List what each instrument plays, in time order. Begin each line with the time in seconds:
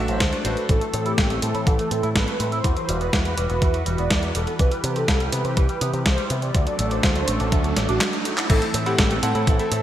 Already playing: analog synth pad F#3 A3 D4 A4, electric grand piano A3 D4 F#4 E5
0.08 picked electric bass A1, analog polysynth C5, closed hi-hat
0.20 picked electric bass D2, kick, snare, closed hi-hat
0.33 electric grand piano A3 D4 F#4 D5, closed hi-hat
0.45 picked electric bass A1, electric grand piano A3 D4 F#4 C5, analog polysynth B4, closed hi-hat
0.57 closed hi-hat
0.69 picked electric bass A1, analog synth pad E3 C4, clean electric guitar E3, analog polysynth A4, kick, closed hi-hat
0.81 clean electric guitar A3, closed hi-hat
0.94 picked electric bass A2, clean electric guitar C4, closed hi-hat
1.06 clean electric guitar E4, analog polysynth G4, closed hi-hat
1.18 picked electric bass A1, clean electric guitar E3, kick, snare, closed hi-hat
1.30 clean electric guitar A3, closed hi-hat
1.42 picked electric bass A2, clean electric guitar C4, analog polysynth A4, closed hi-hat
1.55 picked electric bass A2, clean electric guitar E4, closed hi-hat
1.67 picked electric bass A1, clean electric guitar E3, kick, closed hi-hat
1.79 clean electric guitar A3, analog polysynth A4, closed hi-hat
1.91 picked electric bass A2, clean electric guitar C4, closed hi-hat
2.03 picked electric bass A2, clean electric guitar E4, closed hi-hat
2.15 picked electric bass A1, clean electric guitar E3, analog polysynth B4, kick, snare, closed hi-hat
2.28 clean electric guitar A3, closed hi-hat
2.40 picked electric bass A2, clean electric guitar C4, closed hi-hat
2.52 clean electric guitar E4, analog polysynth C5, closed hi-hat
2.64 picked electric bass E2, clean electric guitar E3, analog synth pad E3 F#4 B4, kick, closed hi-hat
2.76 clean electric guitar F#3, analog polysynth C5, closed hi-hat
2.89 picked electric bass E1, clean electric guitar G3, closed hi-hat
3.01 clean electric guitar B3, analog polysynth B4, closed hi-hat
3.13 picked electric bass E2, clean electric guitar E3, kick, snare, closed hi-hat
3.25 clean electric guitar F#3, analog polysynth B4, closed hi-hat
3.37 picked electric bass E1, clean electric guitar G3, closed hi-hat
3.50 picked electric bass E1, clean electric guitar B3, analog polysynth B4, closed hi-hat
3.62 picked electric bass E2, clean electric guitar E3, kick, closed hi-hat
3.74 clean electric guitar F#3, closed hi-hat
3.86 picked electric bass E1, clean electric guitar G3, closed hi-hat
3.98 picked electric bass E1, clean electric guitar B3, analog polysynth D5, closed hi-hat
4.11 picked electric bass E2, clean electric guitar E3, kick, snare, closed hi-hat
4.23 clean electric guitar F#3, closed hi-hat
4.35 picked electric bass E1, clean electric guitar G3, analog polysynth A4, closed hi-hat
4.47 clean electric guitar B3, closed hi-hat
4.59 picked electric bass C2, clean electric guitar E3, analog synth pad G4, analog polysynth B4, kick, closed hi-hat, riser
4.72 clean electric guitar G3, closed hi-hat
4.84 picked electric bass C3, clean electric guitar B3, closed hi-hat
4.96 clean electric guitar C4, analog polysynth A4, closed hi-hat
5.08 picked electric bass C2, clean electric guitar E3, kick, snare, closed hi-hat
5.20 clean electric guitar G3, closed hi-hat
5.32 picked electric bass C3, clean electric guitar B3, analog polysynth B4, closed hi-hat
5.45 picked electric bass C3, clean electric guitar C4, closed hi-hat
5.57 picked electric bass C2, clean electric guitar E3, kick, closed hi-hat
5.69 clean electric guitar G3, analog polysynth B4, closed hi-hat
5.81 picked electric bass C3, clean electric guitar B3, closed hi-hat
5.93 picked electric bass C3, clean electric guitar C4, closed hi-hat
6.06 picked electric bass C2, clean electric guitar E3, analog polysynth C5, kick, snare, closed hi-hat
6.18 clean electric guitar G3, closed hi-hat
6.30 picked electric bass C3, clean electric guitar B3, closed hi-hat
6.42 clean electric guitar C4, analog polysynth D5, closed hi-hat
6.54 picked electric bass D2, clean electric guitar D3, analog synth pad F#3 A3 D4 A4, kick, closed hi-hat
6.67 clean electric guitar F#3, analog polysynth D5, closed hi-hat
6.79 picked electric bass A1, clean electric guitar A3, closed hi-hat
6.91 clean electric guitar D4, analog polysynth C5, closed hi-hat
7.03 picked electric bass D2, clean electric guitar D3, kick, snare, closed hi-hat
7.15 clean electric guitar F#3, analog polysynth C5, closed hi-hat
7.28 picked electric bass A1, clean electric guitar A3, closed hi-hat
7.40 picked electric bass A1, clean electric guitar D4, analog polysynth A4, closed hi-hat
7.52 picked electric bass D2, clean electric guitar D3, kick, closed hi-hat
7.64 clean electric guitar F#3, closed hi-hat
7.77 picked electric bass A1, clean electric guitar A3, snare, closed hi-hat
7.89 picked electric bass A1, clean electric guitar D4, analog polysynth F#4, closed hi-hat
8.01 clean electric guitar D3, snare, clap, closed hi-hat
8.13 clean electric guitar F#3, closed hi-hat
8.25 clean electric guitar A3, analog polysynth F#4, closed hi-hat
8.38 clean electric guitar D4, clap, closed hi-hat
8.50 picked electric bass A1, analog synth pad E3 A3 C4 A4, clean electric guitar E3, electric grand piano C4 E4 A4 E5, analog polysynth A4, kick, closed hi-hat, crash
8.62 clean electric guitar A3, closed hi-hat
8.74 picked electric bass A2, clean electric guitar C4, closed hi-hat
8.86 electric grand piano C4 E4 A4 F#5, clean electric guitar E4, analog polysynth G4, closed hi-hat
8.98 picked electric bass A1, clean electric guitar E3, kick, snare, closed hi-hat
9.11 clean electric guitar A3, closed hi-hat
9.23 picked electric bass A2, clean electric guitar C4, electric grand piano C4 E4 A4 F#5, analog polysynth A4, closed hi-hat
9.35 picked electric bass A2, clean electric guitar E4, closed hi-hat
9.47 picked electric bass A1, clean electric guitar E3, kick, closed hi-hat
9.59 clean electric guitar A3, electric grand piano C4 E4 A4 E5, analog polysynth A4, closed hi-hat
9.72 picked electric bass A2, clean electric guitar C4, closed hi-hat